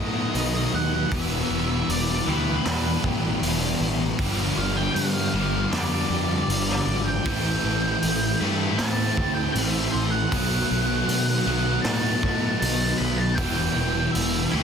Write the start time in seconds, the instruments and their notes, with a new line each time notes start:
Already playing: picked electric bass A2, distorted electric guitar B2 F#3 B3, overdriven electric guitar B2 D#3 A3 B3 F#4, clean electric guitar F#3 A3 D#4 F#4, lead electric guitar D#5
0.34 picked electric bass B1, distorted electric guitar B2 F#3 B3, clean electric guitar D#4, open hi-hat
0.72 picked electric bass D#2, clean electric guitar F#3, lead electric guitar F#5
0.93 lead electric guitar F#5
1.10 picked electric bass E1, distorted electric guitar E2 B2 E3, overdriven electric guitar E2 B2 E3 G3 B3, clean electric guitar B3, lead electric guitar E5, kick, open hi-hat
1.15 overdriven electric guitar G4
1.50 picked electric bass E1, clean electric guitar B3
1.89 picked electric bass E1, clean electric guitar B3, lead electric guitar D5, open hi-hat
2.27 picked electric bass D2, distorted electric guitar E2 B2 E3, clean electric guitar G4, lead electric guitar B4
2.65 overdriven electric guitar E2 B2 E3 G3 B3 G4, picked electric bass E2, clean electric guitar D4, snare, open hi-hat
3.04 picked electric bass A1, clean electric guitar G4, kick
3.40 picked electric bass E1, distorted electric guitar E2 B2 E3, clean electric guitar D4, open hi-hat
3.80 picked electric bass A1, clean electric guitar B3
4.17 picked electric bass G1, overdriven electric guitar G2 D3 F3 G3 B3 G4, distorted electric guitar G2 D3, clean electric guitar F3, kick, open hi-hat
4.21 distorted electric guitar G3
4.57 picked electric bass G1, clean electric guitar F3, lead electric guitar F5
4.76 lead electric guitar G5
4.94 picked electric bass G2, clean electric guitar B3, lead electric guitar F5, open hi-hat
5.34 picked electric bass G1, distorted electric guitar G2 D3 G3, clean electric guitar G4
5.71 picked electric bass F2, overdriven electric guitar G2 D3 F3 G3 B3 G4, clean electric guitar D4, lead electric guitar D5, snare, open hi-hat
6.10 picked electric bass F2, clean electric guitar G4
6.48 picked electric bass G1, distorted electric guitar G2 D3 G3, clean electric guitar D4, open hi-hat
6.69 snare
6.85 picked electric bass G#1, clean electric guitar F3, lead electric guitar D5
7.05 lead electric guitar G5
7.24 picked electric bass A1, overdriven electric guitar A2 E3 A3 C4 E4, distorted electric guitar A2 E3, clean electric guitar E3, lead electric guitar G5, kick, open hi-hat
7.29 distorted electric guitar A3
7.64 picked electric bass A1, clean electric guitar E3
8.02 picked electric bass A1, clean electric guitar A3, open hi-hat
8.40 picked electric bass G2, distorted electric guitar A2 E3 A3, clean electric guitar G4, lead electric guitar B5
8.78 overdriven electric guitar A2 E3 A3 C4 E4, picked electric bass A2, clean electric guitar C4, lead electric guitar A5, snare, open hi-hat
9.17 picked electric bass D2, clean electric guitar G4, kick
9.35 lead electric guitar G5
9.52 picked electric bass A1, distorted electric guitar A2, lead electric guitar E5, open hi-hat
9.56 distorted electric guitar E3 A3, clean electric guitar C4
9.91 picked electric bass A1, clean electric guitar E3, lead electric guitar C5
10.10 lead electric guitar F#5
10.32 picked electric bass B1, overdriven electric guitar B2 D#3 A3 B3 F#4, distorted electric guitar B2 F#3 B3, clean electric guitar F#3, kick, open hi-hat
10.71 picked electric bass B1, clean electric guitar F#3
11.08 picked electric bass B2, clean electric guitar A3, open hi-hat
11.44 picked electric bass B1, distorted electric guitar B3, clean electric guitar F#4, lead electric guitar F#5
11.49 distorted electric guitar B2 F#3
11.82 picked electric bass A2, overdriven electric guitar B2 D#3, clean electric guitar D#4, lead electric guitar A5, snare, open hi-hat
11.87 overdriven electric guitar A3 B3 F#4
12.23 picked electric bass A2, clean electric guitar F#4, kick
12.59 picked electric bass B1, distorted electric guitar B2 F#3, clean electric guitar D#4, lead electric guitar A5, open hi-hat
12.64 distorted electric guitar B3
12.98 picked electric bass B1, clean electric guitar F#3, lead electric guitar B5
13.17 lead electric guitar A5
13.35 picked electric bass E1, overdriven electric guitar E2 B2 E3, distorted electric guitar E2, lead electric guitar G5, kick, open hi-hat
13.40 distorted electric guitar B2 E3, overdriven electric guitar G3 B3 G4
13.76 picked electric bass E1, clean electric guitar E3
14.12 picked electric bass E1, clean electric guitar B3, lead electric guitar E5, open hi-hat
14.52 picked electric bass D2, distorted electric guitar E2 B2 E3, clean electric guitar G4, lead electric guitar B5